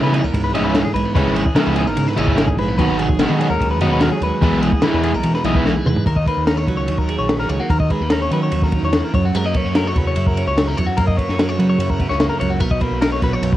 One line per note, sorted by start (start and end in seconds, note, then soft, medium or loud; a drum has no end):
0.00 0.20 C#3 medium
0.00 0.21 C#3 medium
0.00 0.73 E3 medium
0.00 0.20 G#3 medium
0.00 0.03 B3 medium
0.00 0.95 B3 soft
0.00 0.20 C#4 medium
0.00 0.20 E4 medium
0.00 0.14 B4 medium
0.14 0.56 D#4 medium
0.14 0.25 G#4 medium
0.14 ride medium
0.24 0.33 C#2 medium
0.24 0.44 A#4 medium
0.34 0.54 C#2 medium
0.34 1.13 G#2 medium
0.34 kick medium
0.34 ride medium
0.44 0.54 B4 medium
0.54 0.64 G#1 medium
0.54 0.82 C#3 medium
0.54 0.81 G#3 medium
0.54 0.81 C#4 medium
0.54 1.19 D#4 medium
0.54 0.81 E4 medium
0.54 0.64 D#5 medium
0.54 ride medium
0.64 0.82 C#2 medium
0.64 0.75 B4 medium
0.75 1.35 E3 medium
0.75 0.84 A#4 medium
0.75 snare loud
0.75 ride medium
0.85 0.94 G#4 medium
0.94 1.04 B1 medium
0.94 1.05 G#3 medium
0.94 1.14 B4 medium
0.94 ride medium
1.05 1.16 B3 soft
1.15 1.24 C#2 medium
1.15 1.42 C#3 medium
1.15 1.36 C#3 medium
1.15 1.42 G#3 medium
1.15 1.43 C#4 medium
1.15 1.43 E4 medium
1.15 1.36 B4 medium
1.15 kick loud
1.15 ride medium
1.25 1.43 G#1 medium
1.36 2.38 E3 medium
1.36 1.56 G#4 medium
1.36 ride medium
1.46 kick medium
1.55 1.82 C#3 medium
1.55 1.83 G#3 medium
1.55 2.58 B3 medium
1.55 1.83 C#4 medium
1.55 1.83 E4 medium
1.55 1.66 A#4 medium
1.55 snare loud
1.55 ride medium
1.66 1.85 C#2 medium
1.66 1.76 B4 medium
1.76 2.17 D#4 medium
1.76 1.87 G#4 medium
1.76 ride medium
1.86 1.96 G#1 medium
1.86 2.08 A#4 medium
1.96 2.76 G#2 medium
1.96 2.06 C#3 medium
1.96 ride medium
2.07 2.18 B4 medium
2.07 snare soft
2.17 2.54 G#1 medium
2.17 2.45 C#3 medium
2.17 2.44 G#3 medium
2.17 2.44 C#4 medium
2.17 3.41 D#4 medium
2.17 2.44 E4 medium
2.17 2.28 D#5 medium
2.17 ride medium
2.28 2.37 B4 medium
2.28 kick medium
2.37 2.79 E3 medium
2.37 2.47 A#4 medium
2.37 snare loud
2.37 ride medium
2.47 2.58 G#4 medium
2.47 kick medium
2.47 snare soft
2.56 2.80 A#1 medium
2.56 2.68 G#3 medium
2.56 2.77 B4 medium
2.56 ride medium
2.68 2.79 B3 soft
2.78 2.87 D#2 medium
2.78 3.05 D#3 medium
2.78 3.59 D#3 medium
2.78 3.06 F#3 medium
2.78 3.06 B3 medium
2.78 3.06 F#4 medium
2.78 2.98 B4 medium
2.78 kick medium
2.78 ride medium
2.88 3.25 G#1 medium
2.98 4.01 F#3 medium
2.98 3.19 G#4 medium
2.98 ride medium
3.09 kick medium
3.19 3.47 D#3 medium
3.19 3.47 F#3 medium
3.19 4.22 G#3 medium
3.19 3.47 B3 medium
3.19 3.47 F#4 medium
3.19 3.29 A#4 medium
3.19 snare loud
3.19 ride medium
3.29 3.48 D#3 medium
3.29 3.38 B4 medium
3.39 3.81 C#4 medium
3.39 3.50 G#4 medium
3.39 ride medium
3.50 3.59 D#2 medium
3.50 3.71 A#4 medium
3.60 3.80 D#2 medium
3.60 4.40 D#3 medium
3.60 kick medium
3.60 ride medium
3.71 3.81 B4 medium
3.80 3.90 F#2 medium
3.80 4.08 D#3 medium
3.80 4.08 F#3 medium
3.80 4.08 B3 medium
3.80 4.40 C#4 medium
3.80 4.08 F#4 medium
3.80 3.91 D#5 medium
3.80 ride medium
3.90 4.09 D#2 medium
3.90 4.01 B4 medium
4.01 4.46 F#3 medium
4.01 4.12 A#4 medium
4.01 snare medium
4.01 ride medium
4.12 4.22 G#4 medium
4.21 4.31 D#2 medium
4.21 4.82 G#3 medium
4.21 4.42 B4 medium
4.21 ride medium
4.42 4.51 E2 medium
4.42 6.06 E2 medium
4.42 4.69 E3 medium
4.42 4.69 G#3 medium
4.42 4.69 B3 medium
4.42 4.69 E4 medium
4.42 4.62 B4 medium
4.42 kick loud
4.42 ride medium
4.52 4.70 B1 medium
4.63 5.65 E3 medium
4.63 4.83 G#4 medium
4.63 ride medium
4.72 kick medium
4.82 5.10 E3 medium
4.82 5.85 G#3 medium
4.82 5.10 G#3 medium
4.82 5.10 B3 medium
4.82 5.10 E4 medium
4.82 4.93 A#4 medium
4.82 snare loud
4.82 ride medium
4.94 5.12 E2 medium
4.94 5.04 B4 medium
5.03 5.44 D#4 medium
5.03 5.14 G#4 medium
5.03 ride medium
5.14 5.23 B1 medium
5.14 5.34 A#4 medium
5.23 5.65 B2 medium
5.23 5.33 E3 medium
5.23 ride medium
5.34 5.45 B4 medium
5.34 snare soft
5.44 5.80 B1 medium
5.44 5.72 E3 medium
5.44 5.72 G#3 medium
5.44 5.71 B3 medium
5.44 6.04 D#4 medium
5.44 5.71 E4 medium
5.44 5.55 D#5 medium
5.44 ride medium
5.55 5.65 B4 medium
5.55 kick medium
5.65 6.07 E3 medium
5.65 5.76 A#4 medium
5.65 snare medium
5.76 5.87 G#4 medium
5.85 5.95 E2 medium
5.85 6.06 G#3 medium
5.85 6.06 B4 medium
5.85 mid tom medium
5.96 floor tom medium
6.06 6.24 D#2 medium
6.06 6.88 D#3 medium
6.06 6.17 A#4 medium
6.06 kick medium
6.06 ride medium
6.16 6.27 D#5 medium
6.16 kick medium
6.26 7.50 A#3 soft
6.26 6.46 B4 medium
6.26 kick medium
6.26 ride medium
6.37 6.64 D#2 medium
6.47 7.30 C#4 medium
6.47 6.57 A#4 medium
6.47 snare medium
6.47 ride medium
6.57 6.67 C#5 medium
6.67 6.86 C#2 medium
6.67 7.94 F#3 medium
6.67 6.77 B4 medium
6.67 kick medium
6.67 ride medium
6.77 6.98 C#5 medium
6.88 7.15 D#2 medium
6.88 7.68 D#3 medium
6.88 ride medium
6.98 7.18 A#4 medium
6.98 kick medium
7.09 7.68 G#4 medium
7.09 ride medium
7.19 7.46 A#1 medium
7.19 7.39 C#5 medium
7.29 7.40 B3 medium
7.29 snare medium
7.29 ride medium
7.39 7.71 C#4 soft
7.39 7.49 A#4 medium
7.39 snare soft
7.49 7.59 C#2 medium
7.49 7.61 G#3 medium
7.49 7.60 C#5 medium
7.49 ride medium
7.60 7.71 A#3 soft
7.60 7.70 F#4 medium
7.70 7.88 D#2 medium
7.70 8.51 D#3 medium
7.70 7.80 A#4 medium
7.70 kick medium
7.70 ride medium
7.80 7.91 D#5 medium
7.80 kick medium
7.90 8.02 G#3 medium
7.90 8.11 B4 medium
7.90 kick medium
7.90 ride medium
8.01 8.28 D#2 medium
8.01 9.14 A#3 soft
8.10 9.54 C#4 medium
8.10 8.22 A#4 medium
8.10 snare loud
8.10 ride medium
8.22 8.32 C#5 medium
8.31 8.49 D#3 medium
8.31 8.93 F#3 medium
8.31 8.43 B4 medium
8.31 ride medium
8.43 8.64 C#5 medium
8.52 8.79 D#2 medium
8.52 8.72 D#3 medium
8.52 ride medium
8.62 8.84 A#4 medium
8.62 kick medium
8.62 snare soft
8.72 8.94 D#3 medium
8.72 kick medium
8.72 ride medium
8.82 9.01 E2 medium
8.82 9.04 C#5 medium
8.93 9.14 E3 medium
8.93 snare medium
8.93 ride medium
9.04 9.14 A#4 medium
9.14 9.32 F#2 medium
9.14 10.75 F#2 medium
9.14 9.24 C#5 medium
9.14 kick medium
9.14 ride medium
9.25 9.36 F#4 medium
9.35 9.53 F#2 medium
9.35 9.44 G#3 medium
9.35 9.45 A#4 medium
9.35 ride medium
9.44 10.57 A#3 soft
9.44 9.56 D#5 medium
9.54 9.65 B3 medium
9.54 9.76 C#5 medium
9.54 kick medium
9.54 ride medium
9.65 9.92 F#2 medium
9.65 10.36 C#4 soft
9.75 11.39 F#3 medium
9.75 9.87 A#4 medium
9.75 snare loud
9.75 ride medium
9.87 9.97 C#5 medium
9.96 10.14 E2 medium
9.96 10.75 C#3 medium
9.96 10.07 B4 medium
9.96 kick medium
9.96 ride medium
10.07 10.27 C#5 medium
10.16 10.44 F#2 medium
10.16 11.80 E4 medium
10.16 ride medium
10.26 10.47 A#4 medium
10.26 kick medium
10.37 10.76 C#4 medium
10.37 ride medium
10.47 10.74 C#2 medium
10.47 10.67 C#5 medium
10.58 10.68 G#3 medium
10.58 snare loud
10.58 ride medium
10.67 10.78 A#3 soft
10.67 10.77 A#4 medium
10.77 10.87 E2 medium
10.77 12.39 F#2 medium
10.77 10.88 C#5 medium
10.77 ride medium
10.87 10.97 F#4 medium
10.97 11.16 F#2 medium
10.97 12.21 A#3 medium
10.97 11.07 A#4 medium
10.97 kick medium
10.97 ride medium
11.07 11.17 D#5 medium
11.07 kick medium
11.17 11.29 B3 medium
11.17 11.38 C#5 medium
11.17 kick medium
11.17 ride medium
11.29 11.56 F#2 medium
11.29 12.00 C#4 soft
11.29 snare soft
11.38 13.22 F#3 medium
11.38 11.49 A#4 medium
11.38 snare loud
11.38 ride medium
11.49 11.59 C#5 medium
11.59 12.39 C#3 medium
11.59 11.77 F#3 medium
11.59 11.69 B4 medium
11.59 ride medium
11.70 11.90 C#5 medium
11.78 12.06 F#2 medium
11.78 13.57 E4 medium
11.78 ride medium
11.90 12.09 A#4 medium
11.90 kick medium
12.00 12.10 B3 medium
12.00 kick medium
12.00 ride soft
12.09 12.28 C#2 medium
12.09 12.41 C#4 soft
12.09 12.29 C#5 medium
12.09 snare soft
12.20 12.64 A#3 medium
12.20 snare loud
12.20 ride medium
12.29 12.40 A#4 medium
12.40 12.59 C#2 medium
12.40 12.59 F#2 medium
12.40 12.51 C#5 medium
12.40 ride medium
12.50 12.60 F#4 medium
12.60 12.79 B1 medium
12.60 13.43 B2 medium
12.60 12.71 A#4 medium
12.60 kick medium
12.60 ride medium
12.71 12.81 D#5 medium
12.71 kick medium
12.81 13.57 A#3 soft
12.81 13.01 B4 medium
12.81 kick medium
12.81 ride medium
12.91 13.19 B1 medium
13.02 13.57 D#4 medium
13.02 13.12 A#4 medium
13.02 snare loud
13.02 ride medium
13.13 13.23 C#5 medium
13.22 13.41 A#1 medium
13.22 13.57 F#3 medium
13.22 13.33 B4 medium
13.22 kick medium
13.22 snare soft
13.22 ride medium
13.33 13.54 C#5 medium
13.42 13.57 B1 medium
13.42 13.57 F#2 medium
13.42 ride medium
13.53 13.57 B4 medium
13.53 kick medium